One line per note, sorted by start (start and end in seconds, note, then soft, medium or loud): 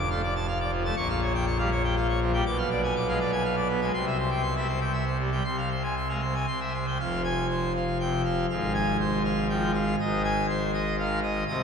0.00 0.93 F1 medium
0.00 0.93 F2 medium
0.10 0.21 A3 medium
0.10 0.21 F5 medium
0.23 0.34 D5 medium
0.35 0.46 A5 medium
0.47 0.58 F5 medium
0.60 0.71 D5 medium
0.72 0.83 F3 medium
0.85 0.95 A3 medium
0.85 0.95 A5 medium
0.96 2.41 A#1 loud
0.96 2.41 A#2 medium
0.96 1.08 C#6 loud
1.10 1.20 F5 medium
1.22 1.33 C#5 medium
1.35 1.45 G5 medium
1.46 1.57 C#6 medium
1.59 1.70 G3 medium
1.59 1.70 F5 medium
1.71 1.82 C#5 medium
1.84 1.95 G5 medium
1.96 2.07 F5 medium
2.09 2.20 C#5 medium
2.21 2.32 F3 medium
2.34 2.44 G3 medium
2.34 2.44 G5 medium
2.46 3.90 B1 medium
2.46 3.90 B2 loud
2.46 2.57 D6 loud
2.58 2.69 F5 medium
2.70 2.81 D5 medium
2.83 2.94 G#5 medium
2.96 3.07 D6 medium
3.08 3.19 G#3 medium
3.08 3.19 F5 medium
3.20 3.31 D5 medium
3.32 3.43 G#5 medium
3.45 3.56 F5 medium
3.57 3.68 D5 medium
3.69 3.80 B3 medium
3.81 3.92 G#3 medium
3.81 3.92 G#5 medium
3.94 5.41 C2 medium
3.94 5.41 C3 medium
3.94 4.05 C6 loud
4.06 4.17 E5 medium
4.18 4.30 C5 medium
4.30 4.42 G5 medium
4.42 4.54 C6 medium
4.56 4.67 G3 medium
4.56 4.67 E5 medium
4.68 4.79 C5 medium
4.81 4.92 G5 medium
4.93 5.04 E5 medium
5.06 5.17 C5 medium
5.19 5.30 G3 medium
5.32 5.43 G3 medium
5.32 5.43 G5 medium
5.44 6.45 C2 medium
5.44 6.45 C3 medium
5.44 5.56 C6 medium
5.57 5.69 F5 medium
5.71 5.83 C5 medium
5.83 5.95 G#5 medium
5.96 6.08 C6 medium
6.09 6.21 G#3 medium
6.09 6.21 F5 medium
6.22 6.34 C5 medium
6.35 6.46 G#5 medium
6.47 6.98 C2 medium
6.47 6.98 C3 medium
6.47 6.60 C6 medium
6.60 6.72 E5 medium
6.74 6.86 C5 medium
6.87 6.98 G5 medium
6.99 8.46 F1 medium
6.99 8.46 F2 medium
6.99 7.22 F5 medium
7.24 7.47 G#5 loud
7.50 7.72 C5 medium
7.75 7.98 F5 medium
8.00 8.23 C3 medium
8.00 8.22 G5 medium
8.25 8.46 F5 medium
8.50 9.96 G#1 medium
8.50 9.96 G#2 medium
8.50 8.72 F5 medium
8.74 8.97 G#5 loud
9.00 9.22 C5 medium
9.24 9.47 F5 medium
9.49 9.72 F3 medium
9.49 9.71 G5 medium
9.74 9.96 F5 medium
9.99 11.44 G#1 medium
9.99 11.44 G#2 medium
9.99 10.22 D#5 medium
10.24 10.46 G#5 loud
10.49 10.71 C5 medium
10.74 10.96 D#5 medium
10.99 11.21 D#3 medium
10.99 11.20 F5 medium
11.23 11.44 D#5 medium
11.48 11.63 C2 medium
11.48 11.63 C3 medium
11.48 11.63 D#5 medium